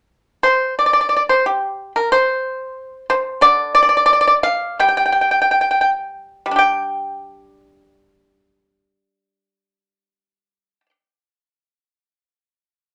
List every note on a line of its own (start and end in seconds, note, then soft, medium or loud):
0.43 0.74 C5 medium
0.79 0.84 D5 soft
0.86 0.91 D5 soft
0.93 0.99 D5 soft
1.01 1.06 D5 soft
1.09 1.14 D5 soft
1.16 1.22 D5 soft
1.29 1.44 C5 medium
1.46 1.92 G4 medium
1.96 2.10 A#4 medium
2.12 3.05 C5 medium
3.10 3.40 C5 medium
3.41 5.61 D3 medium
3.41 3.72 D5 medium
3.75 3.81 D5 medium
3.83 3.88 D5 medium
3.89 3.96 D5 medium
3.97 4.04 D5 medium
4.06 4.12 D5 medium
4.13 4.19 D5 medium
4.21 4.26 D5 medium
4.27 4.34 D5 medium
4.43 4.77 F5 medium
4.79 6.45 G3 soft
4.79 4.87 G5 medium
4.88 4.96 G5 soft
4.97 5.04 G5 medium
5.06 5.11 G5 soft
5.12 5.20 G5 soft
5.21 5.30 G5 soft
5.31 5.40 G5 soft
5.42 5.50 G5 soft
5.51 5.60 G5 soft
5.61 5.70 G5 soft
5.71 5.80 G5 soft
5.81 5.90 G5 soft
6.46 10.80 G3 soft
6.51 10.86 D4 soft
6.56 10.90 G4 soft
6.56 10.89 G5 medium